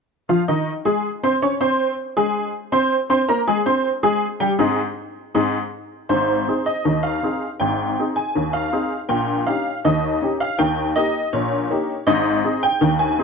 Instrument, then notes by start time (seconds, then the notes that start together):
honky-tonk piano
0.29 F3 F4 F5
0.48 D#3 D#4 D#5
0.85 G#3 G#4 G#5
1.23 C4 C5 C6
1.42 C#4 C#5 C#6
1.61 C4 C5 C6
2.17 G#3 G#4 G#5
2.72 C4 C5 C6
3.10 C4 C5 C6
3.29 A#3 A#4 A#5
3.47 G#3 G#4 G#5
3.66 C4 C5 C6
4.03 G#3 G#4 G#5
4.40 G3 G4 G5
4.59 G#2 C4 D#4 G#4
5.34 G#2 C4 D#4 G#4
6.09 G#1 G#2 C5
6.48 C4 D#4 G#4
6.66 D#5
6.85 D#2 D#3
7.03 F5
7.23 C4 D#4 G#4
7.60 G#1 G#2 G5
7.99 C4 D#4 G#4
8.16 G#5
8.35 D#2 D#3
8.53 F5
8.72 C4 D#4 G#4
9.09 A#1 A#2 G5
9.47 C#4 D#4 G4 F5
9.85 D#2 D#3 D#5
10.22 C#4 D#4 G4
10.40 F5
10.59 D#2 D#3 G5
10.96 A#3 D#4 G4 D#5
11.33 A#1 A#2 C#5
11.70 A#3 D#4 G4
12.07 G#1 G#2 D#5
12.44 C4 D#4 G#4
12.63 G5
12.81 D#2 D#3
12.99 G#5
13.19 C4 D#4 G#4